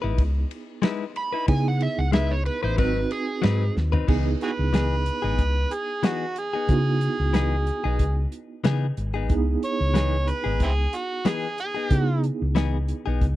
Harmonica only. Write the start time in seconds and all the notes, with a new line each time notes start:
4.43 F#4 G#4 B4
5.73 G#4
6.06 F#4
6.39 G#4
9.65 C#5
10.29 B4
10.63 C4 E4 G#4
10.95 F#4
11.28 G#4
11.60 G#4